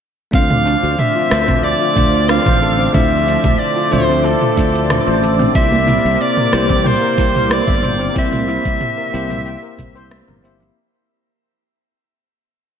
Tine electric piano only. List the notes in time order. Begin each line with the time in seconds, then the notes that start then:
0.31 A3 C4 D4 F4
0.36 C5
1.30 A3 D4 F4 C5 E5
1.94 A3 D4 F4 F5
1.99 C5
2.92 A3 D4 E4 F4
2.97 C5
3.91 A3 D4 F4 C5 E5
4.55 A3 D4 F4 E5
4.60 C5
5.53 A#3 C4 E4 G4
5.57 C5
6.52 A#3 C4 E4 G4 C5
7.16 A#3 C4 E4 G4
7.21 C5
8.14 A#3 C4 E4 G4
8.18 C5
9.12 A#3 C4 E4 G4 C5
10.43 A#3 C4 E4 G4 E5